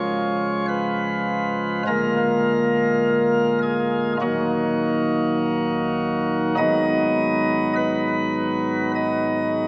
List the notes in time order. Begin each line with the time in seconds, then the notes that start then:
Already playing: C#1 C#2 F3 G#3 F4 C#5
0.68 B4
1.87 D1 D2 G#3 A#3 F4 A#4
3.62 G#4
4.21 D#1 D#2 F#3 A#3 D#4 F#4
6.58 G#1 G#2 F#3 B3 D#4 D#5
7.76 B4
8.95 D#5